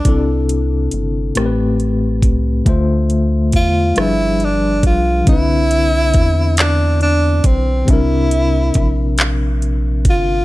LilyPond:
<<
  \new Staff \with { instrumentName = "Tenor saxophone" } { \time 6/8 \key c \major \tempo 4. = 46 d'8 r2 r8 | r4 f'8 e'8 d'8 f'8 | e'4. d'8 d'8 c'8 | e'4. r4 f'8 | }
  \new Staff \with { instrumentName = "Tine electric piano" } { \time 6/8 \key c \major <c c' d' e' a'>4. <a, a c' g' bes' b'>4. | <d a f' c'' e''>4. <f g d' aes' b'>4. | <d c' d' e' b'>2. | <c c' d' bes' e''>2. | }
  \new Staff \with { instrumentName = "Analog synth bass" } { \clef bass \time 6/8 \key c \major c,4 g,,8 a,,4 c,8 | d,4 e,8 g,,4 b,,8 | c,4 e,4. b,,8 | c,4 bes,,4. g,,8 | }
  \new DrumStaff \with { instrumentName = "Drums" } \drummode { \time 6/8 <hh bd>8 hh8 hh8 <hh ss>8 hh8 <hh bd>8 | <hh bd>8 hh8 <hh bd>8 <hh ss>8 hh8 <hh bd>8 | <hh bd>8 hh8 <hh bd>8 <hc hh>8 hh8 <hh bd>8 | <hh bd>8 hh8 <hh bd>8 <hc hh>8 hh8 <hh bd>8 | }
>>